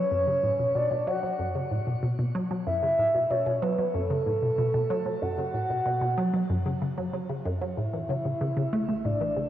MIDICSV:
0, 0, Header, 1, 4, 480
1, 0, Start_track
1, 0, Key_signature, 3, "minor"
1, 0, Tempo, 638298
1, 86, Time_signature, 4, 2, 24, 8
1, 7138, End_track
2, 0, Start_track
2, 0, Title_t, "Soft synth lead"
2, 0, Program_c, 0, 80
2, 0, Note_on_c, 0, 73, 102
2, 568, Note_on_c, 0, 74, 88
2, 579, Note_off_c, 0, 73, 0
2, 807, Note_on_c, 0, 78, 92
2, 819, Note_off_c, 0, 74, 0
2, 1287, Note_off_c, 0, 78, 0
2, 2005, Note_on_c, 0, 76, 107
2, 2485, Note_on_c, 0, 73, 95
2, 2496, Note_off_c, 0, 76, 0
2, 2723, Note_on_c, 0, 71, 87
2, 2734, Note_off_c, 0, 73, 0
2, 2961, Note_on_c, 0, 69, 97
2, 2972, Note_off_c, 0, 71, 0
2, 3922, Note_on_c, 0, 78, 127
2, 3933, Note_off_c, 0, 69, 0
2, 5364, Note_off_c, 0, 78, 0
2, 5846, Note_on_c, 0, 76, 127
2, 6806, Note_on_c, 0, 74, 106
2, 6817, Note_off_c, 0, 76, 0
2, 7138, Note_off_c, 0, 74, 0
2, 7138, End_track
3, 0, Start_track
3, 0, Title_t, "Synth arpeggio sound"
3, 0, Program_c, 1, 84
3, 0, Note_on_c, 1, 54, 76
3, 76, Note_off_c, 1, 54, 0
3, 84, Note_on_c, 1, 42, 80
3, 195, Note_off_c, 1, 42, 0
3, 205, Note_on_c, 1, 49, 74
3, 250, Note_off_c, 1, 49, 0
3, 325, Note_on_c, 1, 45, 73
3, 370, Note_off_c, 1, 45, 0
3, 446, Note_on_c, 1, 47, 76
3, 490, Note_off_c, 1, 47, 0
3, 566, Note_on_c, 1, 47, 101
3, 639, Note_off_c, 1, 47, 0
3, 684, Note_on_c, 1, 47, 96
3, 729, Note_off_c, 1, 47, 0
3, 805, Note_on_c, 1, 54, 99
3, 916, Note_off_c, 1, 54, 0
3, 926, Note_on_c, 1, 54, 72
3, 1036, Note_off_c, 1, 54, 0
3, 1046, Note_on_c, 1, 42, 79
3, 1156, Note_off_c, 1, 42, 0
3, 1167, Note_on_c, 1, 49, 75
3, 1210, Note_off_c, 1, 49, 0
3, 1286, Note_on_c, 1, 45, 73
3, 1330, Note_off_c, 1, 45, 0
3, 1406, Note_on_c, 1, 47, 73
3, 1450, Note_off_c, 1, 47, 0
3, 1525, Note_on_c, 1, 47, 90
3, 1599, Note_off_c, 1, 47, 0
3, 1645, Note_on_c, 1, 47, 93
3, 1690, Note_off_c, 1, 47, 0
3, 1766, Note_on_c, 1, 54, 98
3, 1876, Note_off_c, 1, 54, 0
3, 1886, Note_on_c, 1, 54, 78
3, 1996, Note_off_c, 1, 54, 0
3, 2006, Note_on_c, 1, 42, 82
3, 2116, Note_off_c, 1, 42, 0
3, 2125, Note_on_c, 1, 49, 71
3, 2170, Note_off_c, 1, 49, 0
3, 2245, Note_on_c, 1, 45, 71
3, 2290, Note_off_c, 1, 45, 0
3, 2366, Note_on_c, 1, 47, 73
3, 2410, Note_off_c, 1, 47, 0
3, 2486, Note_on_c, 1, 47, 95
3, 2559, Note_off_c, 1, 47, 0
3, 2604, Note_on_c, 1, 47, 97
3, 2649, Note_off_c, 1, 47, 0
3, 2724, Note_on_c, 1, 54, 101
3, 2835, Note_off_c, 1, 54, 0
3, 2845, Note_on_c, 1, 54, 74
3, 2956, Note_off_c, 1, 54, 0
3, 2964, Note_on_c, 1, 42, 84
3, 3076, Note_off_c, 1, 42, 0
3, 3084, Note_on_c, 1, 49, 78
3, 3129, Note_off_c, 1, 49, 0
3, 3204, Note_on_c, 1, 45, 68
3, 3249, Note_off_c, 1, 45, 0
3, 3326, Note_on_c, 1, 47, 72
3, 3370, Note_off_c, 1, 47, 0
3, 3445, Note_on_c, 1, 47, 92
3, 3519, Note_off_c, 1, 47, 0
3, 3565, Note_on_c, 1, 47, 92
3, 3610, Note_off_c, 1, 47, 0
3, 3685, Note_on_c, 1, 54, 101
3, 3796, Note_off_c, 1, 54, 0
3, 3804, Note_on_c, 1, 54, 73
3, 3915, Note_off_c, 1, 54, 0
3, 3925, Note_on_c, 1, 42, 82
3, 4036, Note_off_c, 1, 42, 0
3, 4045, Note_on_c, 1, 49, 72
3, 4090, Note_off_c, 1, 49, 0
3, 4164, Note_on_c, 1, 45, 76
3, 4209, Note_off_c, 1, 45, 0
3, 4284, Note_on_c, 1, 47, 77
3, 4329, Note_off_c, 1, 47, 0
3, 4404, Note_on_c, 1, 47, 100
3, 4479, Note_off_c, 1, 47, 0
3, 4522, Note_on_c, 1, 47, 96
3, 4568, Note_off_c, 1, 47, 0
3, 4644, Note_on_c, 1, 54, 103
3, 4755, Note_off_c, 1, 54, 0
3, 4764, Note_on_c, 1, 54, 78
3, 4875, Note_off_c, 1, 54, 0
3, 4885, Note_on_c, 1, 42, 86
3, 4996, Note_off_c, 1, 42, 0
3, 5006, Note_on_c, 1, 49, 73
3, 5050, Note_off_c, 1, 49, 0
3, 5126, Note_on_c, 1, 49, 73
3, 5200, Note_off_c, 1, 49, 0
3, 5246, Note_on_c, 1, 54, 76
3, 5320, Note_off_c, 1, 54, 0
3, 5365, Note_on_c, 1, 54, 74
3, 5439, Note_off_c, 1, 54, 0
3, 5486, Note_on_c, 1, 49, 71
3, 5596, Note_off_c, 1, 49, 0
3, 5606, Note_on_c, 1, 42, 103
3, 5680, Note_off_c, 1, 42, 0
3, 5726, Note_on_c, 1, 54, 78
3, 5800, Note_off_c, 1, 54, 0
3, 5846, Note_on_c, 1, 45, 79
3, 5956, Note_off_c, 1, 45, 0
3, 5966, Note_on_c, 1, 52, 75
3, 6010, Note_off_c, 1, 52, 0
3, 6085, Note_on_c, 1, 49, 74
3, 6130, Note_off_c, 1, 49, 0
3, 6206, Note_on_c, 1, 49, 77
3, 6250, Note_off_c, 1, 49, 0
3, 6325, Note_on_c, 1, 49, 105
3, 6399, Note_off_c, 1, 49, 0
3, 6444, Note_on_c, 1, 49, 105
3, 6489, Note_off_c, 1, 49, 0
3, 6564, Note_on_c, 1, 57, 103
3, 6675, Note_off_c, 1, 57, 0
3, 6684, Note_on_c, 1, 57, 72
3, 6795, Note_off_c, 1, 57, 0
3, 6805, Note_on_c, 1, 45, 81
3, 6916, Note_off_c, 1, 45, 0
3, 6925, Note_on_c, 1, 52, 76
3, 6970, Note_off_c, 1, 52, 0
3, 7045, Note_on_c, 1, 49, 72
3, 7089, Note_off_c, 1, 49, 0
3, 7138, End_track
4, 0, Start_track
4, 0, Title_t, "Synth drone"
4, 0, Program_c, 2, 95
4, 5846, Note_on_c, 2, 33, 85
4, 7138, Note_off_c, 2, 33, 0
4, 7138, End_track
0, 0, End_of_file